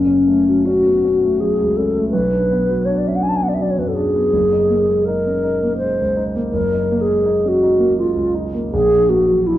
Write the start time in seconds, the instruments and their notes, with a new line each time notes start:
Already playing: grand piano F#1, alto flute C#4
0.05 grand piano C#4
0.27 grand piano A3
0.48 grand piano F#3
0.65 grand piano C#4, alto flute F#4
0.86 grand piano B3
1.05 grand piano C#4
1.23 grand piano A3
1.40 grand piano F#3, alto flute G#4
1.60 grand piano C#2
1.77 grand piano C#4, alto flute A4
1.97 grand piano A3
2.11 grand piano B1, alto flute B4
2.32 grand piano D4
2.51 grand piano B3
2.69 grand piano F#3
2.85 grand piano D4, alto flute C#5
2.98 alto flute D5
3.06 grand piano C#4, alto flute E5
3.16 alto flute F#5
3.23 grand piano D4, alto flute G#5
3.29 alto flute A5
3.36 alto flute G#5
3.40 grand piano B3, alto flute F#5
3.49 alto flute D5
3.54 alto flute E5
3.59 grand piano F#3, alto flute D5
3.71 alto flute C#5
3.78 grand piano F#2, alto flute B4
3.88 alto flute A4
3.94 grand piano D4, alto flute G#4
4.15 grand piano B3
4.33 grand piano F#1
4.52 grand piano D#4
4.70 grand piano A#3
4.88 grand piano G#3
5.05 grand piano D#4, alto flute A#4
5.27 grand piano C#4
5.44 grand piano D#4
5.63 grand piano A#3
5.78 alto flute C5
5.82 grand piano G#3
6.01 grand piano C#2
6.17 grand piano D#4
6.36 grand piano A#3
6.51 grand piano F#1, alto flute A#4
6.71 grand piano D#4
6.91 grand piano A#3
7.01 alto flute G#4
7.10 grand piano G#3
7.25 grand piano D#4
7.45 grand piano C#4, alto flute F#4
7.63 grand piano D#4
7.79 grand piano A#3
7.98 grand piano G#3, alto flute F4
8.15 grand piano C#2
8.34 grand piano D#4
8.54 grand piano A#3
8.72 grand piano A#1, alto flute G#4
8.91 grand piano D4
9.09 grand piano A#3, alto flute F#4
9.29 grand piano F#3
9.47 grand piano D4, alto flute E4